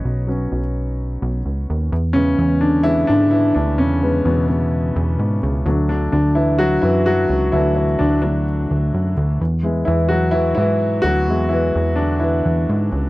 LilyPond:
<<
  \new Staff \with { instrumentName = "Grand piano" } { \time 4/4 \key b \mixolydian \tempo 4 = 128 << { <cis' cis''>2. r4 | \key e \mixolydian r8 <cis cis'>4 <d d'>8 e'8 <d d'>8 <e e'>8 <d d'>8 | <cis cis'>4 <b, b>8 <b, b>2 r8 | r8 <d d'>8 <d d'>8 <e e'>8 <fis fis'>8 <e e'>8 <fis fis'>4 |
<e e'>8 <e e'>8 <d d'>8 <d d'>2 r8 | r4 <e e'>8 <fis fis'>8 <e e'>8 <e e'>4 <fis fis'>8~ | <fis fis'>8 <e e'>4 <d d'>8 <e e'>4. r8 | } \\ { r8 <fis b cis'>8 r2. | r8 <e gis b>4. <e gis b>8 r4. | r8 <e gis b>2.~ <e gis b>8 | <fis a d'>4. r2 r8 |
<fis a d'>8 r4 <fis a d'>8 r2 | r8 <gis b e'>8 r2. | <gis b e'>4. r2 r8 | } >> }
  \new Staff \with { instrumentName = "Analog synth bass" } { \clef bass \time 4/4 \key b \mixolydian b,,4 b,,4. b,,8 cis,8 dis,8 | \key e \mixolydian e,4 e,4. gis,4 d,8 | e,4 e,4. e,8 gis,8 cis,8 | d,4 d,4. fis,4 cis,8 |
d,4 d,4. d,8 fis,8 d,8 | e,4 e,4. gis,4 d,8 | e,4 e,4. e,8 gis,8 cis,8 | }
>>